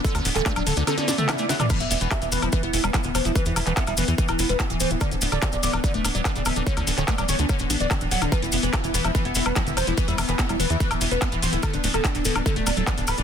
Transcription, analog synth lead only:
X:1
M:4/4
L:1/16
Q:1/4=145
K:Ddor
V:1 name="Analog synth lead"
A D D A D D A D A D D A D D ^F D | B E E B E E B E B E E B E E c E | B E E B E E B E B E E B E E c E | d D D d D D d D d D D d D D e D |
^c D D c D D c D c D D d D D ^f D | B E E B E E B E B E E B E E c E | B E E B E E B E B E E B E E c E | A D D A D D A D A D D A D D B D |]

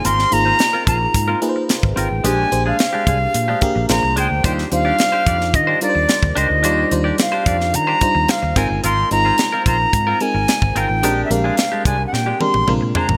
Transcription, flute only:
X:1
M:4/4
L:1/16
Q:1/4=109
K:Eb
V:1 name="Flute"
c'2 b4 b4 z4 g2 | a3 f8- f b2 g2 | g2 f6 e2 d4 e2- | e2 z2 f4 b4 f2 a2 |
c'2 b4 b4 a4 g2- | g3/2 _f/2 =f4 a3/2 _g/2 =g2 c'4 b2 |]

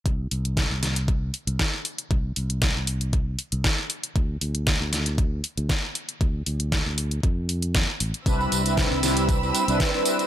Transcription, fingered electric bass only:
X:1
M:4/4
L:1/16
Q:1/4=117
K:Ddor
V:1 name="Fingered electric bass" clef=bass
C,,2 C,,3 C,,4- C,, z C,, z4 | C,,2 C,,3 C,,4- C,, z C,, z4 | D,,2 D,,3 D,,4- D,, z D,, z4 | D,,2 D,,3 D,,3 F,,4- F,, z A,,, z |
C,,2 C,,3 C,,4- C,, z C,, z4 |]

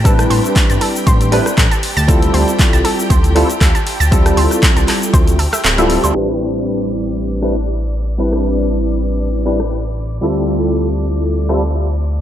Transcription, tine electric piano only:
X:1
M:4/4
L:1/16
Q:"Swing 16ths" 1/4=118
K:Am
V:1 name="Tine electric piano"
[G,CDEB]8- [G,CDEB]2 [G,CDEB] z4 z | [G,CEFA]8- [G,CEFA]2 [G,CEFA] z4 z | [G,CEFA]8- [G,CEFA]2 z3 [G,CEFA]3 | [G,CDEB]8- [G,CDEB]2 [G,CDEB] z4 z |
[G,CDEB]8- [G,CDEB]2 [G,CDEB] z4 z | [G,CEFA]8- [G,CEFA]2 [G,CEFA] z4 z |]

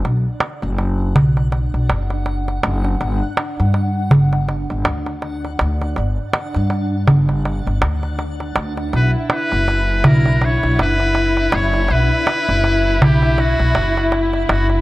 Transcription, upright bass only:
X:1
M:4/4
L:1/16
Q:"Swing 16ths" 1/4=81
K:Bm
V:1 name="Upright bass" clef=bass
B,,, z2 F,,,3 B,,,3 B,,, F,,,4 F,,,2 | G,,, z2 G,,3 G,,,3 G,,, D,,4 D,,2 | G,,, z2 G,,3 G,,,3 G,,, D,,4 D,,2 | B,,, z2 F,,,3 B,,,3 B,,, F,,,4 F,,,2 |
B,,, z2 F,,,3 B,,,3 B,,, F,,,4 F,,,2 |]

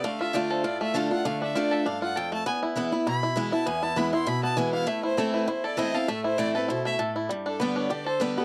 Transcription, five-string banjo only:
X:1
M:4/4
L:1/8
Q:"Swing" 1/4=199
K:Am
V:1 name="Five-string banjo"
A, F A, A F A, A F | A, D F A D F A A, | B, E B, E E E E E | B, E B, E E B, E E |
A, E A, E E A E A | A, E A, A E A, A E | G, D B, D G A D B, |]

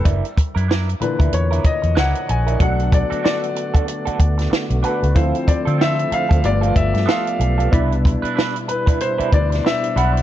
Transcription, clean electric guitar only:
X:1
M:4/4
L:1/16
Q:"Swing 16ths" 1/4=94
K:Bphr
V:1 name="Clean electric guitar"
[DE^A] z2 [DEA] [DEA] z2 [DEA] z [DEA] z2 [DEA] z2 [DEA] | [DFA] z2 [DFA] [DFA] z2 [DFA] z [DFA] z4 [DFA] z | [C=FA] z2 [CFA] [CFA] z2 [CFA] z [B,FA] z2 [B,FA] z2 [B,FA] | [DEB] z2 [DEB] [DEB] z2 [DEB] z [DEB] z4 [DEB] z |]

